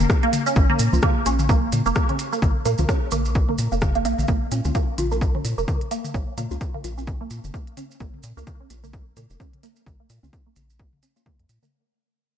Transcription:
0.10 kick, cross-stick, maracas
0.23 synth pluck A#3, closed hi-hat
0.33 closed hi-hat, high tom, maracas
0.46 synth pluck C#4, maracas
0.56 analog synth bass A#1, kick, maracas
0.70 synth pluck A#3, high tom
0.79 analog synth bass A#2, closed hi-hat, maracas
0.93 analog synth bass C#2, synth stab A#3 C#4 F4, low conga, maracas
1.02 synth pluck A#3, kick, cross-stick, closed hi-hat, high tom, maracas
1.26 analog synth bass A#1, synth stab A#3 C#4 F4, synth pluck C#4, closed hi-hat, maracas
1.39 high tom, maracas
1.49 synth pluck A#3, kick, low conga, maracas
1.72 analog synth bass A#2, closed hi-hat, high tom, maracas
1.86 analog synth bass F1, synth pluck A#3, maracas
1.95 kick, cross-stick, maracas
2.09 synth pluck C#4, closed hi-hat, high tom
2.19 closed hi-hat, maracas
2.32 synth pluck A#3, maracas
2.42 analog synth bass A#1, kick, high tom, maracas
2.65 analog synth bass A#2, synth pluck A#3, closed hi-hat, maracas
2.78 analog synth bass C#2, synth stab A#3 C#4 F4, high tom, low conga, maracas
2.89 synth pluck C#4, kick, cross-stick, closed hi-hat, maracas
3.11 analog synth bass A#1, synth pluck A#3, closed hi-hat, high tom, maracas
3.25 maracas
3.35 kick, maracas
3.49 synth pluck A#3, high tom
3.58 analog synth bass A#2, closed hi-hat, maracas
3.72 analog synth bass F1, synth pluck A#3, maracas
3.81 kick, cross-stick, high tom, maracas
3.95 synth pluck A#3, closed hi-hat
4.05 analog synth bass A#1, synth pluck A#3, closed hi-hat, maracas
4.18 analog synth bass A#1, high tom, maracas
4.28 analog synth bass A#1, synth pluck A#3, kick, high tom, maracas
4.51 analog synth bass A#2, synth pluck C#4, closed hi-hat, maracas
4.65 analog synth bass C#2, synth stab A#3 C#4 F4, high tom, maracas
4.75 synth pluck A#3, kick, closed hi-hat, maracas
4.98 analog synth bass A#1, synth stab A#3 C#4 F4, closed hi-hat, high tom, maracas
5.11 synth pluck A#3, maracas
5.21 kick, maracas
5.35 synth pluck C#4, high tom
5.45 analog synth bass A#2, closed hi-hat, maracas
5.58 analog synth bass F1, synth pluck A#3, maracas
5.68 kick, high tom, maracas
5.81 closed hi-hat
5.91 synth pluck A#3, closed hi-hat, maracas
6.04 high tom, maracas
6.14 analog synth bass A#1, synth pluck C#4, kick, maracas
6.38 analog synth bass A#2, synth pluck A#3, closed hi-hat, high tom, maracas
6.51 analog synth bass C#2, synth stab A#3 C#4 F4, maracas
6.61 kick, closed hi-hat, maracas
6.74 synth pluck A#3, high tom
6.84 analog synth bass A#1, synth stab A#3 C#4 F4, closed hi-hat, maracas
6.98 synth pluck C#4, maracas
7.07 kick, high tom, maracas
7.21 synth pluck A#3
7.30 analog synth bass A#2, closed hi-hat, maracas
7.44 analog synth bass F1, high tom, maracas
7.54 synth pluck A#3, kick, maracas
7.67 closed hi-hat
7.77 synth pluck C#4, closed hi-hat, high tom, maracas
7.91 maracas
8.00 analog synth bass A#1, synth pluck A#3, kick, maracas
8.14 high tom
8.23 analog synth bass A#2, closed hi-hat, maracas
8.37 analog synth bass C#2, synth stab A#3 C#4 F4, synth pluck A#3, maracas
8.47 kick, closed hi-hat, high tom, maracas
8.60 synth pluck C#4
8.70 analog synth bass A#1, synth stab A#3 C#4 F4, closed hi-hat, maracas
8.84 synth pluck A#3, high tom, maracas
8.93 kick, maracas
9.16 analog synth bass A#2, synth pluck A#3, closed hi-hat, high tom, maracas
9.30 analog synth bass F1, maracas
9.40 synth pluck C#4, kick, maracas
9.53 closed hi-hat, high tom
9.63 synth pluck A#3, closed hi-hat, maracas
9.76 maracas
9.86 analog synth bass A#1, kick, high tom, maracas
10.00 synth pluck A#3
10.10 analog synth bass A#2, closed hi-hat, maracas
10.23 analog synth bass C#2, synth stab A#3 C#4 F4, synth pluck C#4, high tom, maracas
10.33 kick, closed hi-hat, maracas
10.46 synth pluck A#3
10.56 analog synth bass A#1, closed hi-hat, high tom, maracas
10.70 maracas
10.79 synth pluck A#3, kick, maracas
10.93 high tom
11.03 synth pluck C#4, closed hi-hat, maracas
11.16 synth stab A#3 C#4 F4, maracas
11.26 synth pluck A#3, kick, high tom, maracas
11.39 analog synth bass F2, closed hi-hat
11.49 analog synth bass A#2, closed hi-hat, maracas
11.63 synth pluck A#3, high tom, maracas

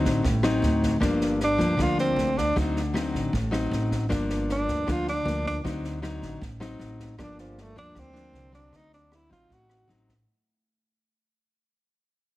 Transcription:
Already playing: nylon-string guitar D3 F#3 C4 D#4
0.05 upright bass A1, kick, snare
0.23 upright bass A1, nylon-string guitar A2, kick, snare
0.43 nylon-string guitar F#3 C4 D#4, cross-stick, snare
0.62 upright bass D2, snare
0.82 kick, snare
1.00 upright bass G1, nylon-string guitar G2 F3 A#3 D4, kick, cross-stick, snare
1.21 snare
1.40 snare
1.44 tenor saxophone D4
1.58 upright bass D2, nylon-string guitar F3 A#3 D4, kick, snare
1.77 upright bass D2, nylon-string guitar D3 F3 A#3 D4, kick, cross-stick, snare
1.82 tenor saxophone F4
1.98 tenor saxophone C4, snare
2.16 upright bass D2, snare
2.37 tenor saxophone D4, kick, snare
2.56 upright bass D2, nylon-string guitar D3 F#3 C4 D#4, kick, cross-stick, snare
2.76 snare
2.94 nylon-string guitar F#3 C4 D#4, cross-stick, snare
3.14 upright bass A1, kick, snare
3.33 upright bass A1, nylon-string guitar A2, kick, snare
3.51 nylon-string guitar F#3 C4 D#4, cross-stick, snare
3.71 upright bass A1, snare
3.91 kick, snare
4.09 upright bass G1, nylon-string guitar G2 F3 A#3 D4, kick, cross-stick, snare
4.30 snare
4.49 tenor saxophone D4, snare
4.68 upright bass D2, kick, snare
4.87 upright bass D2, nylon-string guitar D3 F3 A#3 D4, kick, cross-stick, snare
4.91 tenor saxophone F4
5.07 tenor saxophone D4, snare
5.25 upright bass D2, nylon-string guitar F3 A#3 D4, snare
5.46 tenor saxophone D4, kick, snare
5.64 upright bass D2, nylon-string guitar D3 F#3 C4 D#4, kick, cross-stick, snare
5.84 snare
6.02 nylon-string guitar F#3 C4 D#4, cross-stick, snare
6.22 upright bass A1, kick, snare
6.41 upright bass A1, nylon-string guitar A2, kick, snare
6.60 nylon-string guitar F#3 C4 D#4, cross-stick, snare
6.79 upright bass A1, snare
6.99 kick, snare
7.18 upright bass G1, nylon-string guitar G2 F3 A#3 D4, kick, cross-stick, snare
7.23 tenor saxophone D4
7.38 tenor saxophone F3, snare
7.58 tenor saxophone A3, snare
7.76 upright bass D2, nylon-string guitar F3 A#3 D4, tenor saxophone D4, kick, snare
7.95 upright bass D2, nylon-string guitar D3, kick, cross-stick, snare
7.99 tenor saxophone C4
8.13 nylon-string guitar F3 A#3 D4, snare
8.33 upright bass C2, snare
8.52 nylon-string guitar F#3 C4, tenor saxophone D4, kick, snare
8.72 upright bass D2, nylon-string guitar D3, kick, cross-stick, snare
8.76 tenor saxophone D#4
8.93 tenor saxophone D4, snare
9.12 tenor saxophone E4, cross-stick, snare
9.29 upright bass A1, nylon-string guitar F#3 C4 D#4, tenor saxophone F4, kick, snare
9.49 upright bass A1, nylon-string guitar A2, kick, snare
9.54 tenor saxophone F#4
9.70 cross-stick, snare
9.88 upright bass A1, nylon-string guitar F#3 C4 D#4, snare
10.08 kick, snare

